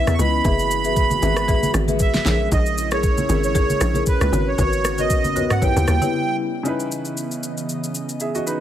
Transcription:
Already playing: E3 B3 C#4 E4 B4 E5
0.07 E2, cross-stick, high conga, shaker
0.14 C#6
0.19 C#2 E4 B4 D#5 B5, high conga, shaker
0.44 F#1 E3 G#3 F#4 G#4 B4 E5, kick, shaker
0.59 shaker
0.71 shaker
0.84 G#4 B4 E5, shaker
0.97 kick, shaker
1.11 high conga, shaker
1.22 G#1 G#4 B4 E5, low conga, shaker
1.37 cross-stick, shaker
1.48 G#4 B4 E5, kick, low conga, shaker
1.63 high conga, shaker
1.74 G#1, cross-stick, shaker
1.88 G#4 B4 E5, high conga, shaker
1.99 E5, kick, shaker
2.14 snare, high conga, shaker
2.25 A#1 C#3 C#4 E4 G#4 A#4 C#5, snare, high conga, shaker
2.52 A#1 D#5, kick, shaker
2.66 shaker
2.78 shaker
2.91 G#4 A#4 C#5, cross-stick, shaker
3.03 kick, shaker
3.18 high conga, shaker
3.29 G#1 G#4 A#4 C#5, low conga, shaker
3.44 C#5, shaker
3.55 G#4 A#4 C#5, kick, low conga, shaker
3.70 high conga, shaker
3.81 A#1, cross-stick, shaker
3.94 G#4 A#4 C#5, high conga, shaker
4.06 B4, kick, shaker
4.21 C#2, cross-stick, high conga, shaker
4.32 G#1 C#3 B3 F#4 A#4 B4 C#5, high conga, shaker
4.48 C#5
4.58 G#1 F#4 A#4 B4 C#5, kick, shaker
4.73 shaker
4.85 cross-stick, shaker
4.98 F#4 A#4 B4 C#5 D#5, high conga, shaker
5.10 kick, shaker
5.24 high conga, shaker
5.36 B1 F#4 A#4 B4 C#5, low conga, shaker
5.50 F#5, cross-stick, mid tom, shaker
5.61 C#3 G3 E4 G4 B4 C#5 G5, kick, low conga, shaker
5.76 D#2, high conga, shaker
5.88 D#2, cross-stick, shaker
6.01 E4 G4 B4 C#5, high conga, shaker
6.63 C#3 E3 B3 C#4 D#4 E4 D#5, shaker
6.68 B4
6.80 shaker
6.92 shaker
7.05 shaker
7.17 shaker
7.31 shaker
7.43 shaker
7.57 shaker
7.69 shaker
7.84 shaker
7.95 shaker
8.09 shaker
8.20 G#4 E5, shaker
8.35 F#4 D#5, shaker
8.47 D#4 B4, shaker

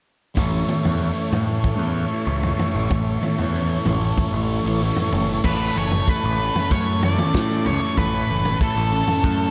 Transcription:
0.35 A1 A2 E3 A3 C#4 E4 C#5, kick, floor tom
0.68 A2 E3 A3, mid tom
0.83 E2 E3 A3, floor tom
0.98 A2 E3 A3
1.31 A2 E3 A3, floor tom
1.46 E3 A3
1.64 kick, floor tom
1.79 E2 E3 A3
2.11 E3 A3
2.26 C#2 A2 E3 A3
2.43 floor tom
2.58 A2 E3 A3, floor tom
2.74 A1 E3 A3
2.90 A1 A2 E3 A3, kick, floor tom
3.21 A2 E3 A3, mid tom
3.38 E2 E3 A3, floor tom
3.54 A2 E3 A3
3.85 A1 A2 E3 A3, floor tom
4.01 E3 A3
4.17 kick, floor tom
4.33 A1 E3 A3
4.65 A1 E3 A3
4.81 A2 E3 A3
4.96 floor tom
5.12 F#1 A2 E3 A3, floor tom
5.28 E3 A3
5.44 A1 A2 C#3 E3 A3 A4 B4, kick, floor tom, crash
5.76 F#1 E3 C#5
5.92 floor tom
6.08 A3 B4, kick
6.24 A1
6.39 C#4
6.56 floor tom
6.71 F#2 A3 C#5, kick
7.03 C#4 D5, floor tom
7.18 mid tom
7.34 A2 A4, kick, snare
7.66 C#2 E4 C#5, floor tom
7.97 A1 A2 B4, kick, floor tom
8.29 F#1 E3
8.45 floor tom
8.61 A3 A4, kick
8.76 A1
8.92 C#4
9.08 floor tom
9.24 F#2 A3, kick

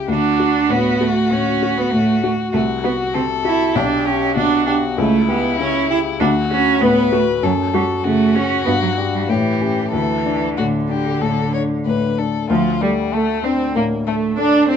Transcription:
Already playing: C#2 C#3 E4 G4
0.08 D2 D4 F#4
0.40 F#4
0.69 A2 B3
1.00 A3 F#4
1.31 A2 C#4
1.63 F#4
1.78 B3
1.92 A2 A3
2.22 A3 F#4
2.53 C2 A3 F#4
2.84 B3 F#4
3.14 C3 C4 A4
3.45 E4 F#4
3.75 B1 D4 G4
4.06 C#4 G4
4.36 B2 D4 F#4
4.66 D4 G4
4.97 C#2 A3 E4
5.29 B3 G4
5.59 C#3 C#4
5.90 E4 G4
6.20 D2 D4 F#4
6.50 C#4 F#4
6.81 A2 B3 B4
7.12 A3 F#4
7.43 F#2 F#3 A4
7.74 G3 F#4
8.04 C#3 A3 F#4
8.34 C#4 F#4
8.65 G2 B3
8.82 F#3
8.98 D4 G4
9.14 G3
9.28 A2 E3 G4
9.61 C#4 G4
9.92 D2 E3 A4
10.25 D4
10.57 A2 D3 F#4
10.89 D4 G4
11.21 A2 A4
11.54 D4 C#5
11.86 A2 B4
12.18 D4 A4
12.50 D2 F3 F4
12.81 G3 A3
13.13 A3 A4
13.43 C4 D4
13.75 A2 A#3
14.07 A3
14.37 D4 A4
14.68 C4 D4

